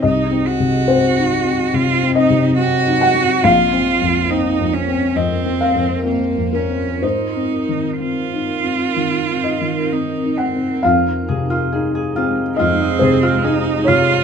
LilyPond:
<<
  \new Staff \with { instrumentName = "Harp" } { \time 4/4 \key f \phrygian \tempo 4 = 69 r1 | r1 | r1 | f'8 aes'16 f'16 aes'16 aes'16 f'8 f'16 ees''16 aes'16 f'16 aes'8 f'16 c''16 | }
  \new Staff \with { instrumentName = "Ambient pad" } { \time 4/4 \key f \phrygian <ges c' ees''>1 | <f' bes' c''>1 | <c' ees' bes'>1 | <aes ees' aes'>1 | }
  \new Staff \with { instrumentName = "Cello" } { \time 4/4 \key f \phrygian ees'8 ges'4. f'8 ees'8 ges'4 | f'4 ees'8 des'8 c'4 bes8 des'8 | ees'4 f'2 ees'8 c'8 | r2 c'4 ees'8 f'8 | }
  \new Staff \with { instrumentName = "Felt piano" } { \time 4/4 \key f \phrygian << { ees''4 c''4 r8 ees''4 ges''8 | f''2 ees''8 f''4 bes'8 | c''2~ c''8 ees''4 ges''8 | f''2 ees''8 c''4 des''8 | } \\ { \tuplet 3/2 { c,8 c'8 c8 c'8 ees'8 c'8 c8 c'8 c8 c'8 ees'8 c'8 } | \tuplet 3/2 { bes,,8 c'8 f,8 c'8 f,8 c'8 f,8 c'8 f,8 c'8 f,8 c'8 } | \tuplet 3/2 { aes,8 c'8 ees8 c'8 ees'8 c'8 ees8 c'8 ees8 c'8 ees'8 c'8 } | f,8 c8 ees'8 c'8 f,8 c8 ees'8 c8 | } >> }
>>